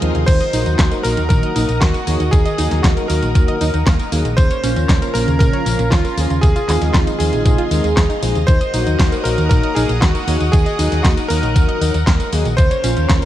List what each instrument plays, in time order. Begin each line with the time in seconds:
Already playing: string machine G#4 D#5 F5 C6
0.02 fingered electric bass D#2, synth arpeggio sound F3, analog polysynth C4 D#4 F4 A#4, closed hi-hat
0.15 fingered electric bass D#2, synth arpeggio sound C3, closed hi-hat
0.26 fingered electric bass D#2, synth arpeggio sound D#3, string machine A#4 D#5 F#5 D#6, electric grand piano C5, kick, closed hi-hat, tambourine, crash
0.41 synth arpeggio sound D#5, closed hi-hat, tambourine
0.53 fingered electric bass A#1, analog polysynth F#3 A#3 D#4 F#4, synth arpeggio sound D#4, open hi-hat, tambourine
0.66 fingered electric bass D#2, synth arpeggio sound D#4, closed hi-hat, tambourine
0.79 fingered electric bass D#2, synth arpeggio sound A#3, kick, snare, clap, closed hi-hat, tambourine
0.92 synth arpeggio sound A#4, closed hi-hat, tambourine
1.03 fingered electric bass A#1, analog polysynth F#3 A#3 D#4 F#4, synth arpeggio sound A#3, electric grand piano A#4, open hi-hat, tambourine
1.17 fingered electric bass D#2, synth arpeggio sound D#3, closed hi-hat, tambourine
1.29 fingered electric bass A#1, synth arpeggio sound D#3, electric grand piano A#4, kick, closed hi-hat, tambourine
1.43 synth arpeggio sound D#5, closed hi-hat
1.56 fingered electric bass A#1, analog polysynth F#3 A#3 D#4 A#4, synth arpeggio sound D#4, open hi-hat, tambourine
1.69 fingered electric bass A#1, synth arpeggio sound D#4, closed hi-hat, tambourine
1.80 fingered electric bass D#2, synth arpeggio sound A#3, electric grand piano F#4, kick, snare, clap, closed hi-hat, tambourine
1.94 synth arpeggio sound A#4, closed hi-hat, tambourine
2.07 fingered electric bass D#2, analog polysynth F#3 A#3 D#4 G#4, synth arpeggio sound A#3, open hi-hat, tambourine
2.20 fingered electric bass D#2, synth arpeggio sound D#3, closed hi-hat, tambourine
2.31 fingered electric bass D#2, synth arpeggio sound D#3, electric grand piano G#4, kick, closed hi-hat, tambourine
2.46 synth arpeggio sound D#5, closed hi-hat, tambourine
2.58 fingered electric bass D#2, analog polysynth F#3 A#3 D#4 F#4, synth arpeggio sound D#4, open hi-hat, tambourine
2.71 fingered electric bass D#2, synth arpeggio sound D#4, snare, closed hi-hat, tambourine
2.83 fingered electric bass D#2, synth arpeggio sound A#3, electric grand piano F#4, kick, snare, clap, closed hi-hat, tambourine
2.97 synth arpeggio sound A#4, closed hi-hat, tambourine
3.08 fingered electric bass D#2, analog polysynth F#3 A#3 D#4 F#4, synth arpeggio sound A#3, electric grand piano A#4, open hi-hat, tambourine
3.23 fingered electric bass A#1, synth arpeggio sound D#3, closed hi-hat, tambourine
3.35 fingered electric bass D#2, synth arpeggio sound D#3, kick, closed hi-hat, tambourine
3.48 synth arpeggio sound D#5, closed hi-hat
3.61 fingered electric bass D#2, analog polysynth F#3 A#3 D#4 A#4, synth arpeggio sound D#4, open hi-hat, tambourine
3.74 fingered electric bass D#2, synth arpeggio sound D#4, closed hi-hat, tambourine
3.87 fingered electric bass D#2, synth arpeggio sound A#3, kick, snare, clap, closed hi-hat, tambourine
3.99 synth arpeggio sound A#4, closed hi-hat, tambourine
4.12 fingered electric bass D#2, analog polysynth F#3 A#3 D#4 G#4, synth arpeggio sound A#3, open hi-hat, tambourine
4.25 fingered electric bass A#1, synth arpeggio sound D#3, closed hi-hat, tambourine
4.37 fingered electric bass D#2, synth arpeggio sound C#3, string machine C#4 F5 A#5, electric grand piano C5, kick, closed hi-hat, tambourine
4.51 synth arpeggio sound C#5, closed hi-hat, tambourine
4.63 fingered electric bass A#1, analog polysynth F3 A#3 C#4 F4, synth arpeggio sound C#4, open hi-hat, tambourine
4.76 fingered electric bass D#2, synth arpeggio sound C#4, closed hi-hat, tambourine
4.89 synth arpeggio sound A#3, kick, snare, clap, closed hi-hat, tambourine
5.02 synth arpeggio sound A#4, closed hi-hat, tambourine
5.14 fingered electric bass A#1, analog polysynth F3 A#3 C#4 F4, synth arpeggio sound A#3, electric grand piano A#4, open hi-hat, tambourine
5.27 fingered electric bass D#2, synth arpeggio sound C#3, closed hi-hat, tambourine
5.39 fingered electric bass A#1, synth arpeggio sound C#3, electric grand piano A#4, kick, closed hi-hat, tambourine
5.53 synth arpeggio sound C#5, closed hi-hat
5.66 fingered electric bass A#1, analog polysynth F3 A#3 C#4 A#4, synth arpeggio sound C#4, open hi-hat, tambourine
5.79 fingered electric bass A#1, synth arpeggio sound C#4, closed hi-hat, tambourine
5.90 fingered electric bass D#2, synth arpeggio sound A#3, electric grand piano F4, kick, snare, clap, closed hi-hat, tambourine
6.05 synth arpeggio sound A#4, closed hi-hat, tambourine
6.17 fingered electric bass D#2, analog polysynth F3 A#3 C#4 G#4, synth arpeggio sound A#3, open hi-hat, tambourine
6.30 fingered electric bass D#2, synth arpeggio sound C#3, closed hi-hat, tambourine
6.41 fingered electric bass D#2, synth arpeggio sound C3, electric grand piano G#4, string machine G#4 D#5 C6, kick, closed hi-hat, tambourine
6.56 synth arpeggio sound F4, closed hi-hat, tambourine
6.68 fingered electric bass D#2, analog polysynth D#3 G#3 C4 D#4 F4, synth arpeggio sound G#3, clap, open hi-hat, tambourine
6.81 fingered electric bass D#2, synth arpeggio sound G#3, snare, closed hi-hat, tambourine
6.93 fingered electric bass D#2, synth arpeggio sound F3, electric grand piano F4, kick, snare, clap, closed hi-hat, tambourine
7.07 synth arpeggio sound D#4, closed hi-hat, tambourine
7.19 fingered electric bass D#2, analog polysynth D#3 G#3 C4 D#4 F4, synth arpeggio sound F3, electric grand piano G#4, open hi-hat, tambourine
7.32 fingered electric bass A#1, synth arpeggio sound C3, closed hi-hat, tambourine
7.46 fingered electric bass A#1, synth arpeggio sound C3, kick, closed hi-hat, tambourine
7.58 synth arpeggio sound F4, closed hi-hat
7.71 fingered electric bass D#2, analog polysynth D#3 G#3 C4 D#4 A#4, synth arpeggio sound G#3, open hi-hat, tambourine
7.84 fingered electric bass D#2, synth arpeggio sound G#3, closed hi-hat, tambourine
7.97 fingered electric bass D#2, synth arpeggio sound F3, kick, snare, clap, closed hi-hat, tambourine
8.10 synth arpeggio sound D#4, closed hi-hat, tambourine
8.22 fingered electric bass A#1, synth arpeggio sound F3, analog polysynth G#3 C4 D#4 G#4, open hi-hat, tambourine
8.35 fingered electric bass D#2, synth arpeggio sound C3, closed hi-hat, tambourine
8.47 fingered electric bass D#2, synth arpeggio sound D#3, string machine A#4 F#5 D#6, electric grand piano C5, kick, closed hi-hat, tambourine
8.61 synth arpeggio sound D#5, closed hi-hat, tambourine
8.74 fingered electric bass A#1, analog polysynth F#3 A#3 D#4 F#4, synth arpeggio sound D#4, open hi-hat, tambourine
8.87 fingered electric bass D#2, synth arpeggio sound D#4, closed hi-hat, tambourine
8.99 fingered electric bass D#2, synth arpeggio sound A#3, kick, snare, clap, closed hi-hat, tambourine
9.12 synth arpeggio sound A#4, closed hi-hat, tambourine
9.24 fingered electric bass A#1, analog polysynth F#3 A#3 D#4 F#4, synth arpeggio sound A#3, electric grand piano A#4, open hi-hat, tambourine
9.38 fingered electric bass D#2, synth arpeggio sound D#3, closed hi-hat, tambourine
9.49 fingered electric bass A#1, synth arpeggio sound D#3, electric grand piano A#4, kick, closed hi-hat, tambourine
9.64 synth arpeggio sound D#5, closed hi-hat
9.75 fingered electric bass A#1, analog polysynth F#3 A#3 D#4 A#4, synth arpeggio sound D#4, electric grand piano G#4, open hi-hat, tambourine
9.89 fingered electric bass A#1, synth arpeggio sound D#4, closed hi-hat, tambourine
10.01 fingered electric bass D#2, synth arpeggio sound A#3, electric grand piano F#4, kick, snare, clap, closed hi-hat, tambourine
10.15 synth arpeggio sound A#4, closed hi-hat, tambourine
10.28 fingered electric bass D#2, analog polysynth F#3 A#3 D#4 G#4, synth arpeggio sound A#3, open hi-hat, tambourine
10.40 fingered electric bass D#2, synth arpeggio sound D#3, closed hi-hat, tambourine
10.52 fingered electric bass D#2, synth arpeggio sound D#3, electric grand piano G#4, kick, closed hi-hat, tambourine
10.66 synth arpeggio sound D#5, closed hi-hat, tambourine
10.79 fingered electric bass D#2, analog polysynth F#3 A#3 D#4 F#4, synth arpeggio sound D#4, open hi-hat, tambourine
10.92 fingered electric bass D#2, synth arpeggio sound D#4, snare, closed hi-hat, tambourine
11.03 fingered electric bass D#2, synth arpeggio sound A#3, electric grand piano F#4, kick, snare, clap, closed hi-hat, tambourine
11.17 synth arpeggio sound A#4, closed hi-hat, tambourine
11.28 fingered electric bass D#2, analog polysynth F#3 A#3 D#4 F#4, synth arpeggio sound A#3, electric grand piano A#4, open hi-hat, tambourine
11.43 fingered electric bass A#1, synth arpeggio sound D#3, closed hi-hat, tambourine
11.56 fingered electric bass D#2, synth arpeggio sound D#3, kick, closed hi-hat, tambourine
11.69 synth arpeggio sound D#5, closed hi-hat
11.81 fingered electric bass D#2, analog polysynth F#3 A#3 D#4 A#4, synth arpeggio sound D#4, open hi-hat, tambourine
11.94 fingered electric bass D#2, synth arpeggio sound D#4, closed hi-hat, tambourine
12.07 fingered electric bass D#2, synth arpeggio sound A#3, kick, snare, clap, closed hi-hat, tambourine
12.20 synth arpeggio sound A#4, closed hi-hat, tambourine
12.33 fingered electric bass D#2, analog polysynth F#3 A#3 D#4 G#4, synth arpeggio sound A#3, open hi-hat, tambourine
12.45 fingered electric bass A#1, synth arpeggio sound D#3, closed hi-hat, tambourine
12.57 fingered electric bass D#2, synth arpeggio sound C#3, string machine C#4 A#4 F5 A#5, electric grand piano C5, kick, closed hi-hat, tambourine
12.71 synth arpeggio sound C#5, closed hi-hat, tambourine
12.84 fingered electric bass A#1, analog polysynth F3 A#3 C#4 F4, synth arpeggio sound C#4, open hi-hat, tambourine
12.97 fingered electric bass D#2, synth arpeggio sound C#4, closed hi-hat, tambourine
13.09 fingered electric bass D#2, synth arpeggio sound A#3, kick, snare, clap, closed hi-hat, tambourine